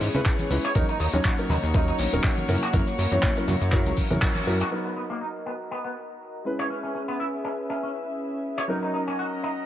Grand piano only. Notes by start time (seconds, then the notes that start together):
Already playing: G#3 C#4 E4 B4
0.14 G#3 C#4 E4 B4
0.50 G#3 C#4 E4 B4
0.75 F#3 C#4 D#4 A#4
1.13 F#3 C#4 D#4 C#5
1.38 F#3 C#4 D#4 A#4
1.74 F#3 C#4 D#4 A#4
2.12 F#3 C#4 D#4 A#4
2.48 F#3 C#4 E4 A#4
2.73 F#3 C#4 E4 A#4
3.11 F#3 C#4 E4 C#5
3.36 F#3 C#4 E4 A#4
3.72 F#3 C#4 E4 A#4
4.10 F#3 C#4 E4 A#4
4.46 F#3 C#4 E4 A#4
4.70 F#3 D#4 A#4
6.44 G#3 C#4 E4 B4
8.68 F#3 C#4 D#4 A#4